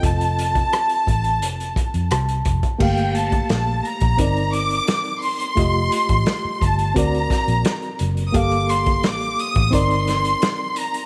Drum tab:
CC |----------------|x---------------|----------------|----------------|
HH |xxxxxxxxxxxxxxxx|-xxxx-xxxxxxxxox|x-xxx-xxxxxxxxxx|xxxxxxxxxxxxx-xx|
SD |----r-----r-r---|----o-------o---|----o-----o-o---|----o-----o-o---|
BD |o--o--o---o---oo|o--o---oo-------|o--o--o-o-o-----|o--o---oo-------|